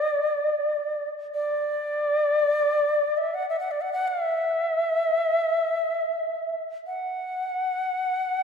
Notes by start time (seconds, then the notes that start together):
Already playing: D5
1.35 D5
3.17 E5
3.34 F#5
3.50 E5
3.60 F#5
3.71 D5
3.81 F#5
3.93 F#5
4.08 E5
6.87 F#5